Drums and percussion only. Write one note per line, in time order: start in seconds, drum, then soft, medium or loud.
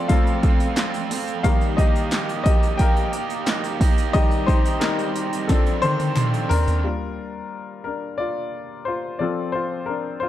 0.09 kick loud
0.09 open hi-hat medium
0.27 open hi-hat soft
0.43 kick medium
0.43 open hi-hat medium
0.60 open hi-hat soft
0.77 snare loud
0.77 clap medium
0.77 open hi-hat medium
0.94 open hi-hat soft
1.11 snare soft
1.11 open hi-hat medium
1.27 open hi-hat medium
1.44 kick loud
1.44 open hi-hat medium
1.61 open hi-hat soft
1.78 kick loud
1.78 open hi-hat medium
1.96 open hi-hat medium
2.12 snare loud
2.12 clap medium
2.12 open hi-hat medium
2.29 open hi-hat soft
2.46 kick loud
2.46 open hi-hat medium
2.63 open hi-hat medium
2.79 kick loud
2.79 open hi-hat medium
2.97 open hi-hat soft
3.13 open hi-hat medium
3.30 open hi-hat medium
3.47 snare loud
3.47 clap medium
3.47 open hi-hat medium
3.64 open hi-hat soft
3.81 kick medium
3.81 snare soft
3.81 open hi-hat medium
3.98 open hi-hat medium
4.15 kick loud
4.15 open hi-hat medium
4.31 open hi-hat soft
4.48 kick loud
4.48 open hi-hat medium
4.65 open hi-hat medium
4.81 snare loud
4.81 clap medium
4.81 open hi-hat medium
4.99 open hi-hat soft
5.16 open hi-hat medium
5.33 open hi-hat medium
5.49 kick loud
5.49 snare medium
5.49 open hi-hat medium
5.66 open hi-hat soft
5.83 open hi-hat medium
5.83 high tom medium
6.00 open hi-hat soft
6.00 high tom medium
6.16 clap medium
6.16 open hi-hat medium
6.16 mid tom medium
6.34 open hi-hat soft
6.51 floor tom loud
6.51 open hi-hat medium
6.68 floor tom loud
6.68 open hi-hat medium